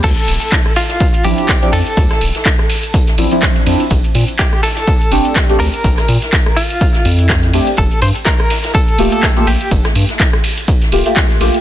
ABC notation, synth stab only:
X:1
M:4/4
L:1/16
Q:"Swing 16ths" 1/4=124
K:Dm
V:1 name="Synth stab"
z8 z2 [F,CDE]3 [F,CDE] z2 | z8 z2 [F,CDE] [F,CDE]3 [F,CDE] z | z8 z2 [A,CDG]3 [A,CDG] z2 | z12 z2 [A,CDG] z |
z8 z2 [A,B,FG]3 [A,B,FG] z2 | z8 z2 [A,B,FG] [A,B,FG]3 [A,B,FG] z |]